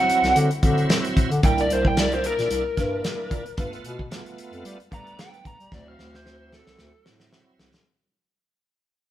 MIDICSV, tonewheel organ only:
0, 0, Header, 1, 2, 480
1, 0, Start_track
1, 0, Tempo, 535714
1, 1282, Time_signature, 4, 2, 24, 8
1, 8157, End_track
2, 0, Start_track
2, 0, Title_t, "Tonewheel organ"
2, 0, Program_c, 0, 16
2, 0, Note_on_c, 0, 54, 66
2, 0, Note_on_c, 0, 60, 62
2, 0, Note_on_c, 0, 64, 77
2, 447, Note_off_c, 0, 54, 0
2, 449, Note_off_c, 0, 60, 0
2, 451, Note_off_c, 0, 64, 0
2, 561, Note_on_c, 0, 54, 75
2, 565, Note_on_c, 0, 60, 68
2, 569, Note_on_c, 0, 64, 83
2, 1167, Note_off_c, 0, 54, 0
2, 1169, Note_off_c, 0, 60, 0
2, 1171, Note_off_c, 0, 64, 0
2, 1281, Note_on_c, 0, 58, 72
2, 1283, Note_on_c, 0, 62, 65
2, 1286, Note_on_c, 0, 64, 75
2, 1686, Note_off_c, 0, 58, 0
2, 1687, Note_off_c, 0, 62, 0
2, 1689, Note_off_c, 0, 64, 0
2, 1761, Note_on_c, 0, 58, 70
2, 1763, Note_on_c, 0, 62, 65
2, 1767, Note_on_c, 0, 64, 73
2, 2367, Note_off_c, 0, 58, 0
2, 2368, Note_off_c, 0, 62, 0
2, 2370, Note_off_c, 0, 64, 0
2, 2480, Note_on_c, 0, 58, 60
2, 2483, Note_on_c, 0, 62, 56
2, 2487, Note_on_c, 0, 64, 67
2, 3087, Note_off_c, 0, 58, 0
2, 3088, Note_off_c, 0, 62, 0
2, 3090, Note_off_c, 0, 64, 0
2, 3199, Note_on_c, 0, 57, 85
2, 3202, Note_on_c, 0, 59, 79
2, 3206, Note_on_c, 0, 65, 90
2, 3605, Note_off_c, 0, 57, 0
2, 3606, Note_off_c, 0, 59, 0
2, 3608, Note_off_c, 0, 65, 0
2, 3678, Note_on_c, 0, 57, 79
2, 3680, Note_on_c, 0, 59, 76
2, 3684, Note_on_c, 0, 65, 97
2, 4285, Note_off_c, 0, 57, 0
2, 4286, Note_off_c, 0, 59, 0
2, 4288, Note_off_c, 0, 65, 0
2, 4400, Note_on_c, 0, 57, 60
2, 4406, Note_on_c, 0, 59, 57
2, 4407, Note_on_c, 0, 62, 66
2, 5006, Note_off_c, 0, 57, 0
2, 5009, Note_off_c, 0, 59, 0
2, 5010, Note_off_c, 0, 62, 0
2, 5119, Note_on_c, 0, 54, 72
2, 5121, Note_on_c, 0, 60, 66
2, 5125, Note_on_c, 0, 64, 80
2, 5525, Note_off_c, 0, 54, 0
2, 5526, Note_off_c, 0, 60, 0
2, 5528, Note_off_c, 0, 64, 0
2, 5595, Note_on_c, 0, 54, 69
2, 5599, Note_on_c, 0, 60, 64
2, 5602, Note_on_c, 0, 64, 74
2, 6204, Note_off_c, 0, 54, 0
2, 6206, Note_off_c, 0, 60, 0
2, 6207, Note_off_c, 0, 64, 0
2, 6317, Note_on_c, 0, 54, 65
2, 6319, Note_on_c, 0, 60, 55
2, 6321, Note_on_c, 0, 64, 72
2, 6924, Note_off_c, 0, 54, 0
2, 6925, Note_off_c, 0, 60, 0
2, 6927, Note_off_c, 0, 64, 0
2, 8157, End_track
0, 0, End_of_file